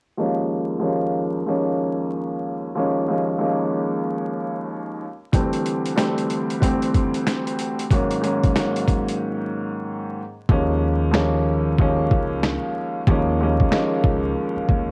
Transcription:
0.17 0.77 D#2 medium
0.17 0.78 F3 medium
0.17 0.78 G#3 medium
0.17 0.78 A#3 medium
0.17 0.79 C#4 loud
0.79 1.41 D#2 medium
0.79 1.41 F3 medium
0.79 1.41 G#3 medium
0.79 1.42 A#3 medium
0.79 1.42 C#4 loud
1.46 2.67 D#2 medium
1.46 2.67 F3 medium
1.46 2.68 G#3 medium
1.46 2.68 A#3 medium
1.46 2.68 C#4 loud
2.75 3.05 D#2 medium
2.75 3.05 F3 medium
2.75 3.06 G#3 medium
2.75 3.06 A#3 medium
2.75 3.06 C#4 loud
3.08 3.37 D#2 medium
3.08 3.37 F3 medium
3.08 3.38 G#3 medium
3.08 3.39 A#3 medium
3.08 3.39 C#4 loud
3.38 5.02 D#2 medium
3.38 5.03 F3 medium
3.38 5.03 G#3 medium
3.38 5.03 A#3 medium
3.38 5.04 C#4 loud
5.32 5.93 D2 medium
5.32 5.93 E3 medium
5.32 5.94 G3 medium
5.32 5.94 A3 medium
5.32 5.94 C4 medium
5.32 kick loud
5.32 closed hi-hat medium
5.53 closed hi-hat medium
5.66 closed hi-hat medium
5.86 closed hi-hat soft
5.95 6.57 D2 medium
5.95 6.57 E3 medium
5.95 6.57 G3 medium
5.95 6.58 A3 medium
5.95 6.58 C4 loud
5.95 snare loud
5.95 snare medium
5.95 closed hi-hat loud
6.18 closed hi-hat medium
6.30 closed hi-hat medium
6.50 closed hi-hat medium
6.60 7.82 D2 medium
6.60 7.82 E3 medium
6.60 7.83 G3 medium
6.60 7.83 A3 medium
6.60 7.83 C4 loud
6.60 kick medium
6.60 closed hi-hat loud
6.82 closed hi-hat soft
6.94 kick medium
6.94 closed hi-hat medium
7.14 closed hi-hat soft
7.27 snare loud
7.27 snare medium
7.27 closed hi-hat medium
7.47 closed hi-hat medium
7.59 closed hi-hat medium
7.79 closed hi-hat medium
7.91 8.20 G#2 medium
7.91 8.21 D#3 medium
7.91 8.21 F#3 medium
7.91 8.22 A#3 medium
7.91 8.22 C#4 medium
7.91 kick loud
7.91 closed hi-hat medium
8.11 closed hi-hat medium
8.21 8.53 G#2 medium
8.21 8.53 D#3 medium
8.21 8.53 F#3 medium
8.21 8.53 A#3 medium
8.21 8.54 C#4 loud
8.21 closed hi-hat medium
8.44 kick medium
8.44 closed hi-hat soft
8.56 10.20 G#2 medium
8.56 10.20 D#3 medium
8.56 10.20 F#3 medium
8.56 10.21 A#3 medium
8.56 10.21 C#4 loud
8.56 snare loud
8.56 snare medium
8.56 closed hi-hat medium
8.76 closed hi-hat medium
8.88 kick medium
8.88 closed hi-hat medium
9.08 closed hi-hat medium
10.49 12.06 D#2 loud
10.49 11.10 D#2 medium
10.49 11.10 F3 medium
10.49 11.10 G#3 medium
10.49 11.11 A#3 medium
10.49 11.11 C#4 loud
10.49 kick loud
11.11 11.73 D#2 medium
11.11 11.73 F3 medium
11.11 11.74 G#3 medium
11.11 11.74 A#3 medium
11.11 11.74 C#4 loud
11.11 snare loud
11.11 snare medium
11.78 12.99 D#2 medium
11.78 13.00 F3 medium
11.78 13.00 G#3 medium
11.78 13.00 A#3 medium
11.78 13.01 C#4 loud
11.78 kick medium
12.11 12.55 C#2 medium
12.11 kick medium
12.43 snare loud
12.43 snare medium
13.07 13.62 D#2 loud
13.07 13.38 D#2 medium
13.07 13.38 F3 medium
13.07 13.38 G#3 medium
13.07 13.38 A#3 medium
13.07 13.39 C#4 loud
13.07 kick loud
13.40 13.69 D#2 medium
13.40 13.70 F3 medium
13.40 13.70 G#3 medium
13.40 13.71 A#3 medium
13.40 13.71 C#4 loud
13.60 kick medium
13.71 14.91 D#2 medium
13.71 14.91 F3 medium
13.71 14.91 G#3 medium
13.71 14.91 A#3 medium
13.71 14.91 C#4 loud
13.71 snare loud
13.71 snare medium
14.04 14.31 C#2 medium
14.04 kick medium
14.56 muted upright bass stroke soft
14.69 14.91 D#2 medium
14.69 kick medium

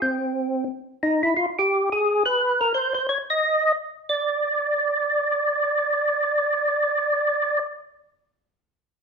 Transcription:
0.02 0.64 C4 medium
1.03 1.22 D#4 medium
1.23 1.34 E4 medium
1.36 1.46 F4 medium
1.59 1.89 G4 medium
1.92 2.23 G#4 medium
2.26 2.61 B4 medium
2.61 2.73 A#4 medium
2.74 2.93 C5 medium
2.94 3.07 C5 medium
3.09 3.18 C#5 medium
3.30 3.72 D#5 medium
4.09 7.59 D5 medium

